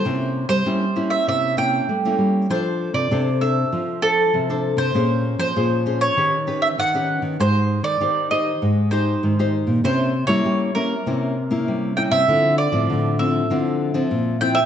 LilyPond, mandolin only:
\new Staff \with { instrumentName = "Mandolin" } { \time 4/4 \key c \mixolydian \tempo 4 = 98 c''8. c''4 e''16 e''8 g''4 r8 | c''8. d''8. e''4 a'4~ a'16 c''16~ | c''8. c''4 des''4 e''16 ges''8. r16 | c''8. d''8. ees''4 c''4 r8 |
c''8. des''8. bes'2 g''16 e''16~ | \key d \minor e''8 d''4 e''2 g''16 e''16 | }